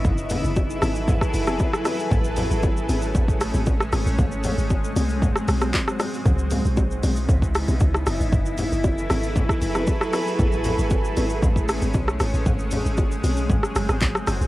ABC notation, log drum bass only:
X:1
M:4/4
L:1/16
Q:1/4=116
K:F#dor
V:1 name="Log drum bass" clef=bass
F,,,3 F,,,3 G,,,3 z F,,,2 z4 | A,,,3 G,,,3 G,,,2 A,,,3 G,,, A,,,2 G,,, A,,, | G,,,3 G,,,3 ^B,,,3 z =B,,,2 z4 | C,,3 B,,,3 B,,,2 C,,3 B,,, C,,2 F,,, G,,, |
F,,,3 F,,,3 G,,,3 z F,,,2 z4 | A,,,3 G,,,3 G,,,2 A,,,3 G,,, B,,,2 G,,, A,,, | G,,,3 G,,,3 B,,,2 G,,, z F,,, G,,, G,,, z F,,, G,,, |]